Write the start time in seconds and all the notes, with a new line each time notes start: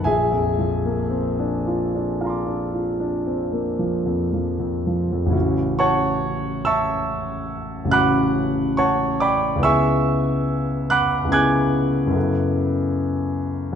0.04 A#1 G#4 E5 G#5
0.32 F2
0.59 F3
0.85 A#3
1.10 C4
1.39 D4
1.67 F4
1.95 D4
2.21 F4 F5 A#5
2.26 C6 D6
2.47 D4
2.74 F4
3.00 D4
3.27 C4
3.52 A#3
3.79 F3
4.06 F2
4.33 F3
4.59 F2
4.87 F3
5.12 F2
5.26 A1 C#3 C#4
5.31 E4 F#4
5.79 C#5 F#5 A5 C#6
6.65 E5 A5 C#6 E6
7.85 A1 C#3 C#4
7.89 E4 F#4 F#5 B5 D6 F#6
8.77 C#5 F#5 A5 C#6
9.20 D5 G5 B5 D6
9.56 C#2 C#3 B3
9.61 E4 G#4 E5 G#5 C#6 E6
10.90 F#5 B5 D6 F#6
11.24 C#2 C#3 B3
11.30 E4 G#4 G#5 D6 F#6 G#6
12.07 F#2 C#3 B3
12.12 E4 A4